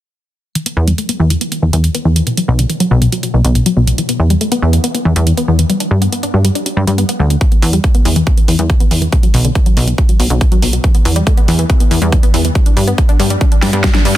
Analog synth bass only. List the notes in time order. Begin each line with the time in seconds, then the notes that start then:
0.77 E2
1.20 E2
1.62 E2
1.73 E2
2.05 E2
2.48 B1
2.91 B1
3.34 B1
3.45 B1
3.77 B1
4.20 E2
4.62 E2
5.05 E2
5.16 E2
5.48 E2
5.91 G2
6.34 G2
6.77 G2
6.87 G2
7.20 D2
7.62 E2
8.05 E2
8.48 E2
8.59 E2
8.91 E2
9.34 B1
9.77 B1
10.20 B1
10.30 B1
10.62 B1
11.05 E2
11.48 E2
11.91 E2
12.02 E2
12.34 E2
12.77 G2
13.20 G2
13.62 G2
13.73 G2
14.05 G2